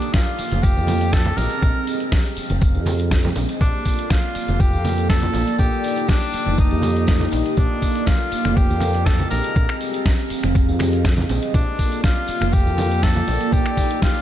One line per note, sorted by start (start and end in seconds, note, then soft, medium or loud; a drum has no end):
0.00 0.09 A#3 medium
0.00 0.15 D4 medium
0.00 0.09 F4 medium
0.00 0.09 A4 medium
0.00 0.09 D5 medium
0.00 closed hi-hat medium
0.00 tambourine soft
0.13 0.65 F4 medium
0.13 kick loud
0.13 snare loud
0.13 closed hi-hat medium
0.13 tambourine medium
0.38 0.85 A#3 medium
0.38 0.85 F4 medium
0.38 0.85 A4 medium
0.38 0.86 F5 medium
0.38 muted fingered electric bass stroke soft
0.38 open hi-hat loud
0.38 tambourine loud
0.52 0.78 F1 medium
0.52 closed hi-hat medium
0.52 tambourine soft
0.52 high conga medium
0.63 1.14 G4 medium
0.63 kick loud
0.63 closed hi-hat medium
0.63 tambourine medium
0.77 1.31 F2 medium
0.77 tambourine soft
0.87 0.96 A#3 medium
0.87 0.96 F4 medium
0.87 0.96 A4 medium
0.87 0.96 D5 loud
0.87 open hi-hat loud
0.87 tambourine medium
0.87 high conga medium
0.87 low conga medium
1.01 closed hi-hat medium
1.01 tambourine soft
1.12 1.39 A4 loud
1.12 kick loud
1.12 snare loud
1.12 closed hi-hat medium
1.12 tambourine medium
1.26 1.60 C4 medium
1.26 1.60 G4 medium
1.26 1.60 G#4 medium
1.26 1.60 D#5 loud
1.26 tambourine soft
1.26 high conga medium
1.26 low conga medium
1.37 1.46 A#1 medium
1.37 1.87 A#4 loud
1.37 open hi-hat loud
1.37 tambourine medium
1.37 low conga medium
1.51 closed hi-hat medium
1.51 tambourine soft
1.62 1.71 A#1 medium
1.62 1.97 C4 medium
1.62 1.97 G4 medium
1.62 1.97 G#4 medium
1.62 1.98 D#5 loud
1.62 kick loud
1.62 closed hi-hat soft
1.62 tambourine soft
1.87 open hi-hat loud
1.87 tambourine medium
2.00 2.07 C4 medium
2.00 2.08 G4 medium
2.00 2.08 G#4 medium
2.00 2.08 D#5 medium
2.00 closed hi-hat medium
2.00 tambourine soft
2.12 kick loud
2.12 snare loud
2.12 closed hi-hat medium
2.12 tambourine soft
2.25 open hi-hat medium
2.36 2.83 C4 medium
2.36 2.84 G4 medium
2.36 2.84 G#4 medium
2.36 2.84 F5 medium
2.36 muted fingered electric bass stroke soft
2.36 open hi-hat loud
2.36 tambourine medium
2.50 2.77 F1 medium
2.50 closed hi-hat medium
2.50 tambourine soft
2.50 high conga medium
2.61 kick loud
2.61 closed hi-hat medium
2.61 tambourine medium
2.75 3.30 F2 medium
2.75 tambourine soft
2.86 2.94 C4 medium
2.86 2.94 G4 medium
2.86 2.94 G#4 medium
2.86 2.95 D#5 loud
2.86 open hi-hat loud
2.86 tambourine medium
2.86 high conga medium
2.86 low conga medium
2.99 closed hi-hat medium
2.99 tambourine soft
3.11 kick loud
3.11 snare loud
3.11 closed hi-hat medium
3.11 tambourine medium
3.24 3.58 C4 loud
3.24 3.58 G4 medium
3.24 3.58 G#4 medium
3.24 3.58 D#5 loud
3.24 snare soft
3.24 tambourine soft
3.24 high conga medium
3.24 low conga medium
3.35 3.45 A#1 medium
3.35 open hi-hat loud
3.35 tambourine medium
3.35 low conga medium
3.49 closed hi-hat medium
3.49 tambourine soft
3.60 3.69 A#1 medium
3.60 3.95 A#3 medium
3.60 4.12 D4 medium
3.60 3.96 F4 medium
3.60 3.96 A4 medium
3.60 3.96 D5 loud
3.60 kick loud
3.60 closed hi-hat soft
3.60 tambourine medium
3.85 kick medium
3.85 open hi-hat loud
3.85 tambourine medium
3.98 4.06 A#3 medium
3.98 4.06 F4 medium
3.98 4.06 A4 medium
3.98 4.06 D5 medium
3.98 closed hi-hat medium
3.98 tambourine soft
4.10 4.61 F4 loud
4.10 kick loud
4.10 snare loud
4.10 closed hi-hat medium
4.10 tambourine soft
4.35 4.82 A#3 medium
4.35 4.82 F4 medium
4.35 4.82 A4 medium
4.35 4.82 F5 medium
4.35 muted fingered electric bass stroke soft
4.35 open hi-hat loud
4.35 tambourine medium
4.48 4.75 F1 medium
4.48 closed hi-hat medium
4.48 tambourine soft
4.48 high conga medium
4.60 5.09 G4 loud
4.60 kick loud
4.60 closed hi-hat soft
4.60 tambourine soft
4.73 5.28 F2 medium
4.73 tambourine soft
4.84 4.92 A#3 loud
4.84 4.93 F4 medium
4.84 4.93 A4 medium
4.84 4.93 D5 loud
4.84 open hi-hat loud
4.84 tambourine medium
4.84 high conga medium
4.84 low conga medium
4.98 closed hi-hat medium
4.98 tambourine soft
5.09 5.56 A4 loud
5.09 kick loud
5.09 snare loud
5.09 closed hi-hat soft
5.09 tambourine soft
5.22 5.56 A#3 medium
5.22 5.56 F4 medium
5.22 5.57 A4 medium
5.22 5.57 D5 loud
5.22 tambourine soft
5.22 high conga medium
5.22 low conga medium
5.34 5.43 A#1 medium
5.34 open hi-hat loud
5.34 tambourine medium
5.34 low conga medium
5.47 closed hi-hat medium
5.47 tambourine soft
5.58 5.68 A#1 medium
5.58 5.94 A#3 medium
5.58 5.94 D#4 medium
5.58 6.11 G4 loud
5.58 5.94 G4 medium
5.58 5.94 D5 loud
5.58 kick loud
5.58 closed hi-hat soft
5.58 tambourine soft
5.71 tambourine soft
5.84 open hi-hat loud
5.84 tambourine medium
5.96 6.04 A#3 medium
5.96 6.04 D#4 medium
5.96 6.04 G4 medium
5.96 6.05 D5 medium
5.96 closed hi-hat medium
5.96 tambourine soft
6.08 6.59 D4 medium
6.08 kick loud
6.08 snare loud
6.08 closed hi-hat soft
6.08 tambourine soft
6.22 open hi-hat medium
6.33 6.80 A#3 medium
6.33 6.80 D#4 medium
6.33 6.81 G4 medium
6.33 6.81 D#5 medium
6.33 muted fingered electric bass stroke soft
6.33 open hi-hat loud
6.33 tambourine medium
6.46 6.73 F1 medium
6.46 closed hi-hat medium
6.46 tambourine soft
6.46 high conga medium
6.58 7.29 D#4 medium
6.58 kick loud
6.58 closed hi-hat soft
6.58 tambourine medium
6.71 7.26 F2 medium
6.71 tambourine soft
6.82 6.94 A#3 medium
6.82 6.94 D#4 medium
6.82 6.94 G4 medium
6.82 6.94 D5 medium
6.82 open hi-hat loud
6.82 tambourine medium
6.82 high conga medium
6.82 low conga medium
6.95 7.17 A#3 medium
6.95 7.18 D#4 medium
6.95 7.18 G4 medium
6.95 7.18 D#5 medium
6.95 closed hi-hat medium
6.95 tambourine soft
7.07 kick loud
7.07 snare loud
7.07 closed hi-hat soft
7.07 tambourine soft
7.20 7.55 A#3 medium
7.20 7.55 D#4 medium
7.20 7.55 G4 medium
7.20 7.55 D#5 medium
7.20 snare soft
7.20 tambourine soft
7.20 high conga medium
7.20 low conga medium
7.32 7.41 A#1 medium
7.32 open hi-hat loud
7.32 tambourine medium
7.32 low conga medium
7.45 closed hi-hat medium
7.45 tambourine soft
7.57 7.66 A#1 medium
7.57 7.92 A#3 medium
7.57 8.08 D4 medium
7.57 7.92 F4 medium
7.57 7.92 A4 medium
7.57 7.92 D5 medium
7.57 kick loud
7.57 closed hi-hat soft
7.57 tambourine soft
7.82 kick medium
7.82 open hi-hat medium
7.82 tambourine medium
7.94 8.02 A#3 medium
7.94 8.02 F4 medium
7.94 8.02 A4 medium
7.94 8.03 D5 medium
7.94 closed hi-hat medium
7.94 tambourine soft
8.06 8.58 F4 medium
8.06 kick loud
8.06 snare loud
8.06 closed hi-hat soft
8.06 tambourine soft
8.31 8.78 A#3 medium
8.31 8.79 F4 medium
8.31 8.79 A4 medium
8.31 8.79 F5 loud
8.31 muted fingered electric bass stroke soft
8.31 open hi-hat loud
8.31 tambourine medium
8.45 8.71 F1 medium
8.45 finger snap medium
8.45 closed hi-hat medium
8.45 tambourine soft
8.45 high conga medium
8.56 9.07 G4 medium
8.56 kick loud
8.56 closed hi-hat soft
8.56 tambourine soft
8.70 9.24 F2 medium
8.70 tambourine soft
8.80 8.89 A#3 medium
8.80 8.89 F4 medium
8.80 8.89 A4 medium
8.80 8.90 D5 loud
8.80 open hi-hat loud
8.80 tambourine medium
8.80 high conga medium
8.80 low conga medium
8.94 closed hi-hat medium
8.94 tambourine soft
9.05 9.30 A4 medium
9.05 kick loud
9.05 snare loud
9.05 closed hi-hat soft
9.05 tambourine soft
9.19 9.53 C4 loud
9.19 9.53 G4 medium
9.19 9.53 G#4 medium
9.19 9.53 D#5 loud
9.19 tambourine soft
9.19 high conga medium
9.19 low conga medium
9.30 9.40 A#1 medium
9.30 9.77 A#4 loud
9.30 open hi-hat loud
9.30 tambourine medium
9.30 low conga medium
9.44 closed hi-hat medium
9.44 tambourine soft
9.55 9.64 A#1 medium
9.55 9.90 C4 medium
9.55 9.91 G4 medium
9.55 9.91 G#4 medium
9.55 9.91 D#5 loud
9.55 kick loud
9.55 closed hi-hat soft
9.55 tambourine soft
9.69 finger snap medium
9.81 open hi-hat medium
9.81 tambourine medium
9.93 10.01 C4 medium
9.93 10.01 G4 medium
9.93 10.01 G#4 medium
9.93 10.01 D#5 medium
9.93 closed hi-hat medium
9.93 tambourine soft
10.06 kick loud
10.06 snare loud
10.06 closed hi-hat soft
10.06 tambourine medium
10.19 open hi-hat medium
10.30 10.77 C4 medium
10.30 10.77 G4 medium
10.30 10.77 G#4 medium
10.30 10.77 F5 loud
10.30 muted fingered electric bass stroke soft
10.30 open hi-hat loud
10.30 tambourine medium
10.43 10.70 F1 medium
10.43 finger snap medium
10.43 closed hi-hat medium
10.43 tambourine soft
10.43 high conga medium
10.55 kick loud
10.55 closed hi-hat medium
10.55 tambourine medium
10.69 11.23 F2 medium
10.69 tambourine soft
10.79 10.87 C4 medium
10.79 10.88 G4 medium
10.79 10.88 G#4 medium
10.79 10.88 D#5 loud
10.79 finger snap medium
10.79 open hi-hat loud
10.79 tambourine medium
10.79 high conga medium
10.79 low conga medium
10.93 closed hi-hat medium
10.93 tambourine soft
11.05 kick loud
11.05 snare loud
11.05 closed hi-hat medium
11.05 tambourine medium
11.17 11.51 C4 medium
11.17 11.51 G4 medium
11.17 11.52 G#4 medium
11.17 11.52 D#5 loud
11.17 snare soft
11.17 tambourine soft
11.17 high conga medium
11.17 low conga medium
11.29 11.38 A#1 medium
11.29 open hi-hat medium
11.29 tambourine medium
11.29 low conga medium
11.43 closed hi-hat medium
11.43 tambourine soft
11.54 11.63 A#1 medium
11.54 11.89 A#3 medium
11.54 12.00 D4 medium
11.54 11.89 F4 medium
11.54 11.89 A4 medium
11.54 11.89 D5 medium
11.54 kick loud
11.54 closed hi-hat medium
11.54 tambourine soft
11.79 kick medium
11.79 open hi-hat medium
11.79 tambourine medium
11.92 11.99 A#3 medium
11.92 11.99 F4 medium
11.92 12.00 A4 medium
11.92 12.00 D5 medium
11.92 closed hi-hat medium
11.92 tambourine soft
12.04 12.54 F4 medium
12.04 kick loud
12.04 snare loud
12.04 closed hi-hat medium
12.04 tambourine medium
12.28 12.75 A#3 medium
12.28 12.75 F4 medium
12.28 12.76 A4 medium
12.28 12.76 F5 loud
12.28 muted fingered electric bass stroke soft
12.28 open hi-hat loud
12.28 tambourine loud
12.41 12.68 F1 medium
12.41 finger snap medium
12.41 closed hi-hat medium
12.41 tambourine soft
12.41 high conga medium
12.53 13.04 G4 loud
12.53 kick loud
12.53 closed hi-hat medium
12.53 tambourine soft
12.66 13.21 F2 medium
12.66 tambourine soft
12.78 12.86 A#3 medium
12.78 12.86 F4 medium
12.78 12.86 A4 medium
12.78 12.86 D5 loud
12.78 open hi-hat medium
12.78 tambourine medium
12.78 high conga medium
12.78 low conga medium
12.91 closed hi-hat medium
12.91 tambourine soft
13.03 13.54 A4 loud
13.03 kick loud
13.03 snare loud
13.03 closed hi-hat medium
13.03 tambourine soft
13.16 13.50 A#3 loud
13.16 13.50 F4 medium
13.16 13.50 A4 medium
13.16 13.50 D5 loud
13.16 tambourine soft
13.16 high conga medium
13.16 low conga medium
13.28 13.36 A#1 medium
13.28 open hi-hat loud
13.28 tambourine medium
13.28 low conga medium
13.41 closed hi-hat medium
13.41 tambourine soft
13.52 13.61 A#1 medium
13.52 13.87 A#3 medium
13.52 13.87 D#4 medium
13.52 14.02 G4 loud
13.52 13.88 G4 medium
13.52 13.88 D5 loud
13.52 kick loud
13.52 closed hi-hat medium
13.52 tambourine medium
13.66 finger snap medium
13.66 tambourine soft
13.77 kick medium
13.77 open hi-hat medium
13.77 tambourine medium
13.77 high conga medium
13.90 13.97 A#3 medium
13.90 13.98 D#4 medium
13.90 13.98 G4 medium
13.90 13.98 D5 medium
13.90 closed hi-hat medium
13.90 tambourine soft
14.02 14.22 F4 medium
14.02 kick loud
14.02 snare loud
14.02 closed hi-hat medium
14.02 tambourine soft
14.14 open hi-hat medium
14.14 tambourine soft